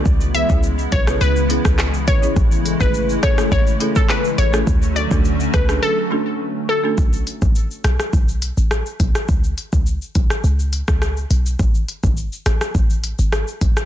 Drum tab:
HH |--x---x---x---x-|--x---x---x---x-|--x---x---------|--x---x---x---x-|
SH |xxxxxxxxxxxxxxxx|xxxxxxxxxxxxxxxx|xxxxxxxx--------|xxxxxxxxxxxxxxxx|
CP |------------x---|------------x---|----------------|----------------|
SD |-------r---rr---|------rr----r--r|------rr--------|------rr----r--r|
BD |o--o--o----o--o-|o--o--o-o--o----|o--o--o---------|o--o----o-----o-|

HH |--x---x---x---x-|--x---x---x---x-|
SH |xxxxxxxxxxxxxxxx|xxxxxxxxxxxxxxxx|
CP |----------------|----------------|
SD |-------r---rr---|------rr----r--r|
BD |o--o--o----o----|o--o----o-----o-|